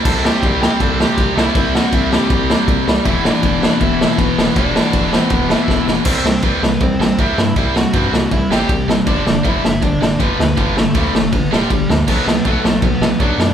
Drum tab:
CC |x-------|--------|--------|--------|
RD |--x-x-x-|x-x-x-x-|x-x-x-x-|x-x-x---|
SD |-o-o-o-o|-o-o-o-o|-o-o-o-o|-o-o-ooo|
BD |o-o-o-o-|o-o-o-o-|o-o-o-o-|o-o-o-o-|

CC |x-------|--------|--------|--------|
RD |--x-x-x-|x-x-x-x-|x-x-x-x-|x-x-x-x-|
SD |-o-o-o-o|-o-o-o-o|-o-o-o-o|-o-o-o-o|
BD |o-o-o-o-|o-o-o-o-|o-o-o-o-|o-o-o-o-|

CC |x-------|
RD |--x-x-x-|
SD |-o-o-o-o|
BD |o-o-o-o-|